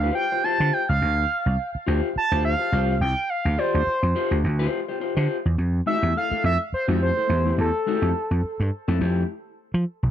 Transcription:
Already playing: analog synth lead F5
0.04 clean electric guitar F4 G4 C5
0.15 analog synth lead G5
0.32 clean electric guitar F4 G4 C5
0.44 clean electric guitar F4 G4 C5, analog synth lead A5
0.60 slap bass D3, clean electric guitar F4 G4 C5
0.73 analog synth lead G5
0.89 slap bass C#2, analog synth lead F5
1.02 slap bass D2
1.46 slap bass C2
1.75 muted slap bass stroke
1.87 slap bass D2, clean electric guitar F4 G4 C5
2.16 analog synth lead A5, muted slap bass stroke
2.32 slap bass D2, clean electric guitar F4 G4 C5
2.45 analog synth lead F5
2.59 clean electric guitar F4 G4 C5
2.72 slap bass C2, clean electric guitar F4 G4 C5
3.01 slap bass C2, analog synth lead G5
3.29 analog synth lead F5
3.45 slap bass D2
3.58 clean electric guitar F4 G4 D5, analog synth lead C5
3.74 slap bass D2, analog synth lead C5
3.87 muted slap bass stroke
4.03 slap bass F2
4.15 clean electric guitar F4 G4 C5
4.31 slap bass D2
4.44 slap bass D2
4.59 clean electric guitar F4 G4 C5
4.88 clean electric guitar F4 G4 C5
5.00 clean electric guitar F4 G4 C5
5.17 slap bass D3, clean electric guitar F4 G4 C5
5.46 slap bass E2
5.58 slap bass F2
5.86 clean electric guitar A3 E4 G4, analog synth lead E5
6.03 slap bass E2
6.15 clean electric guitar A3 E4 A4, analog synth lead F5
6.31 clean electric guitar A3 E4 A4, muted slap bass stroke
6.44 slap bass F2, analog synth lead E5
6.73 analog synth lead C5, muted slap bass stroke
6.88 slap bass F2, clean electric guitar A3 E4 G4
7.02 analog synth lead C5
7.17 clean electric guitar A3 E4 A4
7.29 slap bass E2, clean electric guitar A3 E4 G4
7.46 clean electric guitar A3 E4 G4
7.58 slap bass E2, analog synth lead A4
7.86 clean electric guitar A3 E4 G4
8.02 slap bass F2
8.31 slap bass F2
8.44 muted slap bass stroke
8.60 slap bass G2
8.88 slap bass F2, clean electric guitar A3 E4 A4
9.01 slap bass F2, clean electric guitar A3 E4 G4
9.74 slap bass F3
10.03 slap bass B1

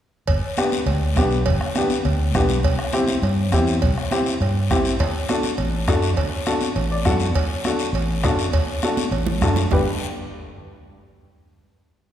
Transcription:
0.27 fingered electric bass G1, bombo low, cowbell, long guiro
0.57 upright piano B3 D4 G4, bombo rim, high conga, short guiro
0.72 high conga, short guiro
0.86 fingered electric bass D2, cowbell, long guiro
1.16 fingered electric bass B1, upright piano B3 D4 G4, bombo low, bombo rim, high conga, low timbale, short guiro
1.31 short guiro
1.46 fingered electric bass G1, bombo low, cowbell, long guiro
1.61 bombo rim
1.75 upright piano B3 D4 G4, bombo rim, high conga, short guiro
1.90 high conga, short guiro
2.05 fingered electric bass D2, cowbell, long guiro
2.34 fingered electric bass B1, upright piano B3 D4 G4, bombo low, bombo rim, high conga, low conga, short guiro
2.49 low conga, short guiro
2.63 fingered electric bass C2, bombo low, cowbell, long guiro
2.79 bombo rim
2.93 upright piano C4 E4 G4, bombo rim, high conga, short guiro
3.08 high conga, short guiro
3.22 fingered electric bass G2, cowbell, long guiro
3.52 fingered electric bass E2, upright piano C4 E4 G4, bombo low, bombo rim, high conga, low timbale, short guiro
3.67 short guiro
3.82 fingered electric bass C2, bombo low, cowbell, long guiro
3.98 bombo rim
4.11 upright piano C4 E4 G4, bombo rim, high conga, short guiro
4.26 short guiro
4.41 fingered electric bass G2, cowbell, long guiro
4.70 fingered electric bass A1, upright piano C4 E4 G4, bombo low, bombo rim, high conga, low conga, short guiro
4.85 short guiro
4.99 fingered electric bass D2, bombo low, cowbell, long guiro
5.29 upright piano D4 F#4 A4, bombo rim, high conga, short guiro
5.43 high conga, short guiro
5.58 fingered electric bass A1, cowbell, long guiro
5.88 fingered electric bass F#2, upright piano D4 F#4 A4, bombo low, bombo rim, high conga, low timbale, short guiro
6.02 short guiro
6.17 fingered electric bass D2, bombo low, cowbell, long guiro
6.46 upright piano D4 F#4 A4, bombo rim, high conga, short guiro
6.61 high conga, short guiro
6.76 fingered electric bass A1, cowbell, long guiro
6.92 upright piano D5
7.05 fingered electric bass F#2, upright piano D4 F#4 A4 F#5, bombo low, bombo rim, high conga, low conga, short guiro
7.20 short guiro
7.35 fingered electric bass D2, bombo low, cowbell, long guiro
7.64 upright piano D4 F#4 A4, bombo rim, high conga, short guiro
7.79 short guiro
7.93 fingered electric bass A1, cowbell, long guiro
8.24 fingered electric bass F#2, upright piano D4 F#4 A4, bombo low, bombo rim, high conga, low timbale, short guiro
8.39 short guiro
8.53 fingered electric bass D2, bombo low, cowbell, long guiro
8.82 upright piano D4 F#4 A4, bombo rim, high conga, short guiro
8.97 high conga, short guiro
9.11 fingered electric bass A1, cowbell, long guiro
9.26 low conga
9.41 fingered electric bass F#2, upright piano D4 F#4 A4, bombo low, bombo rim, low conga, short guiro
9.56 low conga, short guiro
9.71 fingered electric bass G1, upright piano D4 G4 B4, bombo low, low conga, low timbale, long guiro

